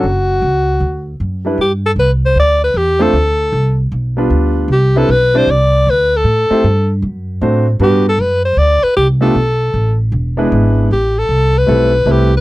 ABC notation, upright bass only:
X:1
M:4/4
L:1/8
Q:"Swing" 1/4=155
K:D
V:1 name="Upright bass" clef=bass
F,,,2 C,,2 D,,2 F,,2 | [K:G] G,,2 C,,2 D,,2 E,,2 | D,,2 C,,2 B,,,2 D,,2 | C,,2 B,,,2 C,,2 D,,2 |
A,, z G,,2 F,,2 A,,2 | G,,2 F,,2 D,, z C,,2 | B,,,2 A,,,2 E,,,2 ^G,,,2 | A,,,2 C,,2 B,,,2 C,,2 |]